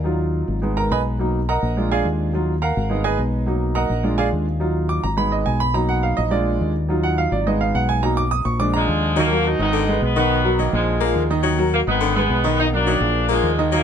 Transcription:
Already playing: fingered electric bass D#2
0.04 grand piano F#3 D#4 F4
0.48 fingered electric bass G#1
0.62 grand piano G#3 B3 D#4
0.77 grand piano A#4 A#5
0.90 fingered electric bass B1, grand piano B4 D#5 G#5 B5
1.19 grand piano F#3 A#3 D#4
1.49 grand piano A#4 D#5 F#5 A#5
1.62 fingered electric bass A#1
1.77 grand piano G#3 D4 F4
1.92 grand piano G#4 D5 F5 G#5
2.05 fingered electric bass D#2
2.33 grand piano F#3 D#4 F4
2.62 grand piano A#4 F5 F#5 A#5
2.76 fingered electric bass G#1
2.90 grand piano G#3 B3 D#4
3.04 grand piano G#4 B4 D#5 G#5
3.19 fingered electric bass B1
3.46 grand piano F#3 A#3 D#4
3.75 grand piano A#4 D#5 F#5 A#5
3.89 fingered electric bass A#1
4.03 grand piano G#3 D4 F4
4.18 grand piano G#4 D5 F5 G#5
4.32 fingered electric bass D#2
4.60 grand piano F#3 D#4 F4
4.89 grand piano D6
5.03 fingered electric bass G#1, grand piano A#5
5.17 grand piano G#3 B3 D#4 B5
5.32 grand piano D#5
5.46 fingered electric bass B1, grand piano G#5
5.60 grand piano B5
5.74 grand piano F#3 A#3 D#4 A#5
5.89 grand piano F#5
6.03 grand piano F5
6.17 fingered electric bass A#1, grand piano D#5
6.31 grand piano G#3 D4 F4 D5
6.61 fingered electric bass D#2
6.89 grand piano F#3 D#4 F4
7.03 grand piano F#5
7.18 grand piano F5
7.31 fingered electric bass G#1, grand piano D5
7.46 grand piano G#3 B3 D#4 D#5
7.61 grand piano F5
7.74 fingered electric bass B1, grand piano F#5
7.89 grand piano G#5
8.03 grand piano F#3 A#3 D#4 A#5
8.17 grand piano D6
8.31 grand piano D#6
8.45 fingered electric bass A#1, grand piano C#6
8.59 grand piano F3 G#3 D4 D6
8.74 horn section D3 F3 G#3, grand piano A#5
8.88 fingered electric bass D#2
9.16 grand piano D#3 D#4 D#5, horn section F3 F#3 A#3, baritone saxophone F#3
9.30 grand piano F#3 F#4 A#4
9.46 horn section D#4
9.58 fingered electric bass G#1, grand piano D#3 D#4 D#5, horn section G#3 B3 D#4
9.73 baritone saxophone D3
9.88 grand piano G#3 G#4 B4
10.02 fingered electric bass B1, horn section B3
10.15 baritone saxophone D#3, grand piano D#3 D#4 D#5, horn section D#3 F#3 B3
10.44 grand piano F#3 F#4 A#4
10.59 grand piano D#3 D#4 D#5, baritone saxophone F#3, horn section A#3
10.73 fingered electric bass A#1, horn section D3 F3 G#3, grand piano F3 F4 G#4
11.00 grand piano F3 F4 G#4, baritone saxophone A#3
11.15 fingered electric bass D#2
11.30 grand piano D#3 D#4 D#5
11.43 grand piano D#3 D#4 D#5, baritone saxophone F#3
11.58 grand piano F#3 F#4 A#4
11.74 horn section A#3
11.87 fingered electric bass G#1, grand piano D#3 D#4 D#5, horn section D#3 G#3 B3
12.00 baritone saxophone D3
12.15 horn section D#3 G#3 B3, grand piano G#3 G#4 B4
12.29 fingered electric bass B1
12.44 baritone saxophone D#3, grand piano D#3 D#4 D#5
12.59 horn section F#3 A#3 D#4
12.73 grand piano F#3 F#4 A#4, horn section F#3 A#3 D4
12.86 grand piano D#3 D#4 D#5, baritone saxophone F#3
13.00 fingered electric bass A#1, grand piano F3 F4 G#4
13.29 horn section D3 F3 G#3, grand piano F3 F4 G#4, baritone saxophone A#3
13.43 fingered electric bass D#2
13.58 grand piano D#3 D#4 D#5
13.72 grand piano D#3 D#4 D#5, horn section F3 F#3 A#3, baritone saxophone F#3

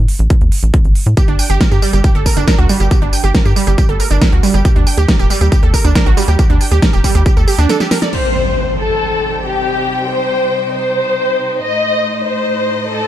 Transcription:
0.08 open hi-hat
0.19 analog synth bass A1, closed hi-hat
0.30 kick, closed hi-hat
0.41 analog synth bass D#2, closed hi-hat
0.52 open hi-hat
0.63 analog synth bass A1, closed hi-hat
0.74 kick, closed hi-hat
0.85 analog synth bass A1, closed hi-hat
0.95 open hi-hat
1.06 analog synth bass A2, closed hi-hat
1.17 synth pluck G4, kick, closed hi-hat, tambourine
1.28 analog synth bass G1, synth pluck D4, closed hi-hat
1.39 synth pluck G5, open hi-hat, tambourine
1.50 analog synth bass G1, synth pluck G4, closed hi-hat, tambourine
1.61 synth pluck A#4, kick, snare, closed hi-hat, tambourine
1.71 analog synth bass G2, synth pluck G4, closed hi-hat, tambourine
1.82 synth pluck G3, open hi-hat, tambourine
1.93 analog synth bass G1, synth pluck G4, closed hi-hat, tambourine
2.04 synth pluck G4, kick, closed hi-hat, tambourine
2.15 analog synth bass G1, synth pluck A4, closed hi-hat
2.26 synth pluck A#4, kick, open hi-hat, tambourine
2.37 analog synth bass G1, synth pluck D4, closed hi-hat, tambourine
2.48 synth pluck A#4, kick, snare, closed hi-hat, tambourine
2.58 analog synth bass D2, synth pluck F#4, closed hi-hat
2.69 synth pluck G3, open hi-hat, tambourine
2.80 analog synth bass G1, synth pluck G4, closed hi-hat, tambourine
2.91 synth pluck G4, kick, closed hi-hat, tambourine
3.02 analog synth bass G1, synth pluck D4, closed hi-hat
3.13 synth pluck G5, open hi-hat, tambourine
3.24 analog synth bass G1, synth pluck G4, closed hi-hat, tambourine
3.35 synth pluck A#4, kick, snare, closed hi-hat, tambourine
3.45 analog synth bass G2, synth pluck G4, closed hi-hat, tambourine
3.56 synth pluck G3, open hi-hat, tambourine
3.67 analog synth bass G1, synth pluck G4, closed hi-hat, tambourine
3.78 synth pluck G4, kick, closed hi-hat, tambourine
3.89 analog synth bass G1, synth pluck A4, closed hi-hat
4.00 synth pluck A#4, open hi-hat, tambourine
4.11 analog synth bass G1, synth pluck D4, closed hi-hat, tambourine
4.22 synth pluck A#4, kick, snare, closed hi-hat, tambourine
4.32 analog synth bass D2, synth pluck F#4, closed hi-hat
4.43 synth pluck G3, open hi-hat, tambourine
4.54 analog synth bass G1, synth pluck G4, closed hi-hat, tambourine
4.65 synth pluck G4, kick, closed hi-hat, tambourine
4.76 analog synth bass D#2, synth pluck D4, closed hi-hat
4.87 synth pluck G5, open hi-hat, tambourine
4.98 analog synth bass D#2, synth pluck G4, closed hi-hat, tambourine
5.08 synth pluck A#4, kick, snare, closed hi-hat, tambourine
5.19 analog synth bass D#1, synth pluck G4, closed hi-hat, tambourine
5.30 synth pluck G3, open hi-hat, tambourine
5.41 analog synth bass D#2, synth pluck G4, closed hi-hat, tambourine
5.52 synth pluck G4, kick, closed hi-hat, tambourine
5.63 analog synth bass D#2, synth pluck A4, closed hi-hat
5.74 synth pluck A#4, kick, open hi-hat, tambourine
5.85 analog synth bass D#2, synth pluck D4, closed hi-hat, tambourine
5.95 synth pluck A#4, kick, snare, closed hi-hat, tambourine
6.06 analog synth bass A#1, synth pluck F#4, closed hi-hat
6.17 synth pluck G3, open hi-hat, tambourine
6.28 analog synth bass D#2, synth pluck G4, closed hi-hat, tambourine
6.39 synth pluck G4, kick, closed hi-hat, tambourine
6.50 analog synth bass D#2, synth pluck D4, closed hi-hat
6.61 synth pluck G5, open hi-hat, tambourine
6.71 analog synth bass D#2, synth pluck G4, closed hi-hat, tambourine
6.82 synth pluck A#4, kick, snare, closed hi-hat, tambourine
6.93 analog synth bass D#1, synth pluck G4, closed hi-hat, tambourine
7.04 synth pluck G3, kick, open hi-hat, tambourine
7.15 analog synth bass D#2, synth pluck G4, closed hi-hat, tambourine
7.26 synth pluck G4, kick, closed hi-hat, tambourine
7.37 analog synth bass D#2, synth pluck A4, closed hi-hat, tambourine
7.48 synth pluck G4, open hi-hat, tambourine
7.58 analog synth bass D#2, synth pluck D4, closed hi-hat, tambourine
7.69 synth pluck A4, snare, closed hi-hat, tambourine
7.80 synth pluck G4, snare, closed hi-hat, tambourine
7.91 synth pluck A#4, snare, open hi-hat, tambourine
8.02 synth pluck D5, snare, closed hi-hat, tambourine
8.13 string section C3 G3 D#4 C5 G5, violin section C5, crash, impact
8.78 violin section A4
9.43 violin section G4
10.09 violin section C5
10.74 violin section C5
11.61 string section A2 A3 D#5, violin section D#5
12.26 violin section C5
12.91 violin section A4

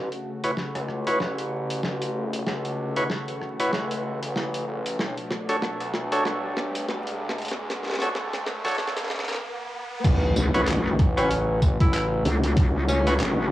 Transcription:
Already playing: analog synth pad C#3 A3 F#4, riser
0.12 closed hi-hat
0.44 tonewheel organ E4 F#4 B4 C#5, closed hi-hat
0.57 snare
0.75 analog synth bass C#2, cross-stick, closed hi-hat
0.89 cross-stick
1.07 tonewheel organ E4 F#4 B4 C#5, closed hi-hat
1.20 analog synth bass A1, snare
1.38 closed hi-hat
1.70 closed hi-hat
1.83 analog synth bass A1, snare
2.02 closed hi-hat
2.33 closed hi-hat
2.47 analog synth bass C#2, cross-stick, snare
2.65 closed hi-hat
2.96 tonewheel organ E4 F#4 B4 C#5, closed hi-hat
3.10 snare
3.28 closed hi-hat
3.41 cross-stick
3.60 tonewheel organ E4 F#4 B4 C#5, closed hi-hat
3.73 analog synth bass C#2, snare
3.91 closed hi-hat
4.22 analog synth bass A1, closed hi-hat
4.36 snare
4.54 closed hi-hat
4.67 analog synth bass A1
4.86 closed hi-hat
4.99 analog synth bass B1, analog synth pad B2 D4, snare
5.17 closed hi-hat
5.31 snare
5.49 tonewheel organ D4 F#4 A4 C#5, closed hi-hat
5.62 snare
5.80 analog synth bass D2, closed hi-hat
5.94 snare
6.12 tonewheel organ D4 F#4 A4 C#5, closed hi-hat
6.25 analog synth bass B1, snare
6.57 snare
6.75 closed hi-hat
6.89 analog synth bass B1, snare
7.07 closed hi-hat
7.29 snare
7.38 closed hi-hat
7.42 closed hi-hat
7.45 closed hi-hat
7.48 analog synth bass E2, analog synth pad G#3, snare, closed hi-hat
7.70 snare, closed hi-hat
7.83 snare
7.86 snare
7.90 snare
7.92 snare
7.94 snare
7.99 snare
8.02 tonewheel organ D4 F#4 A4 C#5, snare, closed hi-hat
8.15 analog synth bass D2, snare
8.33 snare, closed hi-hat
8.46 analog synth bass F#2, snare
8.65 tonewheel organ D4 F#4 A4 C#5, snare, closed hi-hat
8.68 closed hi-hat
8.71 closed hi-hat
8.75 analog synth bass A1, snare, closed hi-hat
8.78 closed hi-hat
8.83 closed hi-hat
8.87 snare, closed hi-hat
8.92 closed hi-hat
8.97 snare, closed hi-hat
9.03 snare
9.07 snare
9.10 snare
9.14 snare
9.19 snare
9.24 snare
9.28 analog synth bass B1, snare, closed hi-hat
9.31 snare
9.35 snare
10.04 analog synth bass A1, analog synth pad C#3 A3 F#4, kick, closed hi-hat, crash, impact
10.36 wobble bass A1, closed hi-hat, tambourine
10.54 wobble bass A1, tonewheel organ E4 F#4 B4 C#5, closed hi-hat
10.67 clap, closed hi-hat
10.86 cross-stick
10.99 analog synth bass A1, kick, cross-stick, closed hi-hat
11.17 tenor saxophone C#4, tonewheel organ E4 F#4 B4 C#5, closed hi-hat
11.31 closed hi-hat
11.62 analog synth bass A1, kick, closed hi-hat, tambourine
11.80 analog synth bass A1, tenor saxophone E4, kick, closed hi-hat
11.94 tenor saxophone E4, clap, closed hi-hat
12.25 wobble bass C#2, closed hi-hat
12.44 closed hi-hat
12.57 kick, cross-stick, closed hi-hat
12.88 tenor saxophone C#4, closed hi-hat, tambourine
13.07 tonewheel organ E4 F#4 B4 C#5, closed hi-hat
13.20 wobble bass A1, clap, closed hi-hat

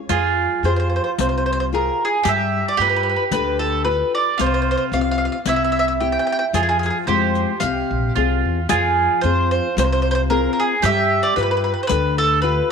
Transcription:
0.09 upright bass F2, nylon-string guitar F3, mandolin F4 G#4, riq
0.63 upright bass F2, nylon-string guitar F4 G4 G#4, mandolin C5, riq
0.76 mandolin C5
0.90 mandolin C5
0.96 mandolin C5
1.04 mandolin C5
1.18 upright bass C2, nylon-string guitar C3, mandolin C5, riq
1.29 mandolin C5
1.38 mandolin C5
1.46 mandolin C5
1.53 mandolin C5
1.60 mandolin C5
1.73 nylon-string guitar F4 G4 G#4, mandolin A#4
2.05 mandolin G#4
2.23 upright bass G2, nylon-string guitar G3, mandolin G4, riq
2.29 mandolin E5
2.68 mandolin D5
2.77 upright bass G2, nylon-string guitar F4 G4 B4, mandolin G4 B4, riq
2.89 mandolin B4
2.96 mandolin B4
3.03 mandolin B4
3.09 mandolin B4
3.16 mandolin B4
3.31 upright bass D2, nylon-string guitar D3, mandolin B4, riq
3.59 mandolin A4
3.85 nylon-string guitar F4 G4 B4, mandolin B4
4.15 mandolin D5
4.38 upright bass C2, nylon-string guitar C3, mandolin F4 C5, riq
4.46 mandolin C5
4.54 mandolin C5
4.62 mandolin C5
4.71 mandolin C5
4.78 mandolin C5
4.92 upright bass C2, nylon-string guitar C4 F4 G4, mandolin F5, riq
5.01 mandolin F5
5.11 mandolin F5
5.18 mandolin F5
5.25 mandolin F5
5.32 mandolin F5
5.45 upright bass C2, nylon-string guitar C3, mandolin E4 E5, riq
5.56 mandolin E5
5.65 mandolin E5
5.72 mandolin E5
5.79 mandolin E5
5.88 mandolin E5
6.00 nylon-string guitar C4 E4 G4, mandolin G5
6.12 mandolin G5
6.19 mandolin G5
6.27 mandolin G5
6.32 mandolin G5
6.39 mandolin G5
6.53 upright bass F2, nylon-string guitar F3, mandolin F4 G#4, riq
6.63 mandolin G#4
6.69 mandolin G#4
6.79 mandolin G#4, riq
6.86 mandolin G#4
6.90 mandolin G#4
7.07 upright bass F2, nylon-string guitar G#3 C4 F4, mandolin G4 C5, riq
7.35 riq
7.60 upright bass C2, nylon-string guitar C3, mandolin F5, riq
7.91 upright bass A#1
8.15 upright bass C2, nylon-string guitar C4 F4 G#4, mandolin F4, riq
8.45 upright bass E2
8.69 upright bass F2, nylon-string guitar F3, mandolin F4 G#4, riq
9.21 upright bass F2, nylon-string guitar C4 F4 G#4, mandolin C5, riq
9.51 mandolin C5
9.77 upright bass C2, nylon-string guitar C3, mandolin C5, riq
9.84 mandolin C5
9.92 mandolin C5
10.02 mandolin C5
10.11 mandolin C5
10.30 nylon-string guitar C4 F4 G#4, mandolin A#4
10.53 mandolin A#4
10.60 mandolin G#4
10.82 upright bass G2, nylon-string guitar G3, mandolin G4 E5, riq
11.23 mandolin D5
11.36 upright bass G2, nylon-string guitar F4 G4 B4, mandolin B4, riq
11.43 mandolin B4
11.51 mandolin B4
11.57 mandolin B4
11.64 mandolin B4
11.74 mandolin B4
11.83 mandolin C5
11.87 upright bass D2, nylon-string guitar D3, mandolin B4, riq
12.18 mandolin A4
12.42 nylon-string guitar F4 G4 B4, mandolin B4

